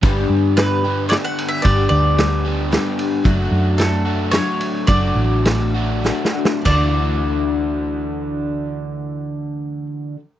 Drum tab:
CC |------------------|------------------|------------------|------------------|
RD |x-----x-----x--x--|x-----x-----x--x--|x-----x-----x--x--|x-----x-----------|
SD |------o-----o-----|------o-----o-----|------o-----o-----|------o-----o-o-o-|
BD |o-----------------|o-----------------|o-----------------|o-----------------|

CC |x-----------------|------------------|
RD |------------------|------------------|
SD |------------------|------------------|
BD |o-----------------|------------------|